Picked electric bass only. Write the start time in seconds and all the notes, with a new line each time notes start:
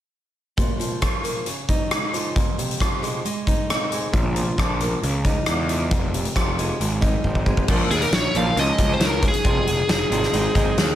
4.13 A#1
4.58 A#1
5.03 C#2
5.48 E2
5.91 F1
6.36 F1
6.80 G#1
7.24 G#1
7.68 A#1
7.90 D#2
8.12 A#1
8.34 A#1
8.56 C#2
8.79 C#2
8.99 C#2
9.45 F1
9.67 F1
9.89 F1
10.10 G#1
10.33 G#1
10.55 G#1
10.77 D#2